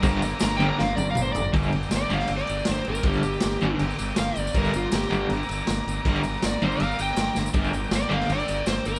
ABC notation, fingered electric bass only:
X:1
M:4/4
L:1/8
Q:1/4=160
K:Gm
V:1 name="Fingered electric bass" clef=bass
G,,,2 G,,,2 G,,, G,,, G,,, G,,, | G,,, G,,, G,,, G,,, G,,, G,,, G,,, G,,, | G,,, G,,, G,,, G,,, G,,, G,,, G,,, G,,, | G,,, G,,, G,,, G,,, G,,, G,,, G,,, G,,, |
G,,, G,,, G,,, G,,, G,,, G,,, G,,, G,,, | G,,, G,,, G,,, G,,, G,,, G,,, G,,, G,,, |]